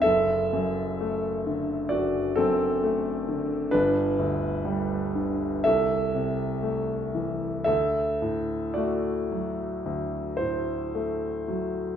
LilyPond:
<<
  \new Staff \with { instrumentName = "Grand piano" } { \time 4/4 \key d \mixolydian \tempo 4 = 61 << { e''2 d''8 a'4. | b'2 e''2 | e''4 d''4. c''4. | } \\ { a'2 fis'8 c'4. | d'2 a'2 | a'4 fis'2~ fis'8 r8 | } >> }
  \new Staff \with { instrumentName = "Grand piano" } { \clef bass \time 4/4 \key d \mixolydian fis,,8 fis,8 a8 d8 fis,,8 fis,8 a8 d8 | g,,8 d,8 g8 d8 c,8 c8 a8 e8 | d,8 a,8 a8 fis8 d,8 a,8 a8 fis8 | }
>>